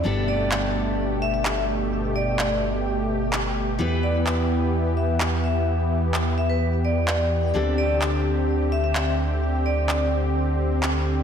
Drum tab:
CP |--x---x-|--x---x-|--x---x-|--x---x-|

CP |--x---x-|--x---x-|